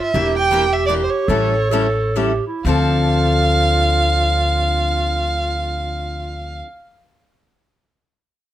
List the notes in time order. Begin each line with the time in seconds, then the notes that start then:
Already playing: F4
0.02 E5
0.14 E1 E3 A#3 D4 G4
0.36 G5
0.51 E3 A#3 D4 G4
0.73 E5
0.86 E3 A#3 D4 G4 D5
1.04 C5
1.10 C#5
1.28 A1 E3 G3 C#4 E4 A4
1.70 E3 G3 C#4 E4 A4
2.16 E3 G3 C#4 E4 G4 A4
2.47 E4
2.65 D2 D3 F3 C4 D4 F4 F5
2.69 A4